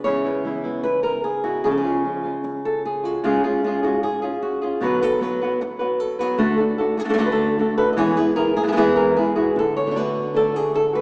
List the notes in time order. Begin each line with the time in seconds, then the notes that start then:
0.04 C#3 E3 G#3 B3 E4 C#5
0.24 G#3 B3 E4
0.44 E3 G#3 B3 E4
0.64 G#3 B3 E4
0.83 B4, muted nylon-string guitar stroke
1.03 A#4
1.24 G#4
1.44 G#3 B3 E4 F#4
1.64 C#3 F3 G#3 C#4 F4 G#4
1.71 A4
1.77 G#4
1.84 G#3 C#4 F4
2.04 F3 G#3 C#4 F4
2.23 G#3 C#4 F4
2.44 muted nylon-string guitar stroke
2.65 A4
2.85 G#4
3.04 G#3 C#4 F4 F#4
3.24 C#3 G#3 C#4 F4 G#4
3.44 C#4 F4 G#4
3.64 G#3 C#4 F4 G#4
3.83 C#4 F4 F#4 G#4
4.03 G#4, muted nylon-string guitar stroke
4.22 C#4 F4 G#4
4.42 F#4
4.62 C#4 F4 G#4
4.81 B2 D3 F#3 B3 F#4 B4
5.01 F#3 B3 F#4 A4 B4
5.20 F#3 B3 F#4 B4
5.42 F#3 B3 F#4 B4
5.61 muted nylon-string guitar stroke
5.79 F#3 B3 F#4 B4
6.00 A4
6.19 F#3 B3 F#4 G#4 B4
6.38 D3 A3 D4 F#4 A4
6.58 D4 F#4 A4
6.78 D4 F#4 A4
6.97 G#4, muted nylon-string guitar stroke
7.04 A3 D4 F#4 A4
7.09 A3 D4 F#4 A4
7.14 A3 D4 F#4 A4
7.18 D3 A3 D4 F#4 A4
7.26 B4
7.32 A4
7.59 A3 D4 F#4 A4
7.77 D4 F#4 A4 B4
7.93 E3 D#5
7.97 G#3 B3 E4 G#4 C#5
8.17 B3 E4 G#4 B4
8.36 B3 E4 G#4 A#4
8.57 G#4, muted nylon-string guitar stroke
8.63 G#3 B3 E4 G#4
8.67 G#3 B3 E4 G#4
8.72 E3 G#3 B3 E4 G#4
8.77 G#3 B3 E4 G#4
8.96 A#4
9.16 G#3 B3 E4 G#4
9.36 B3 E4 F#4 G#4
9.56 D3 A4, muted nylon-string guitar stroke
9.77 C#5
9.86 D3 A3 D4 F#4
9.91 D3 A3 D4 F#4
9.95 D3 A3 D4 F#4 B4
10.34 D3 A3 D4 F#4 A4
10.54 A3 D4 F#4 G#4
10.74 A4, muted nylon-string guitar stroke
10.93 A3 D4 F#4 B4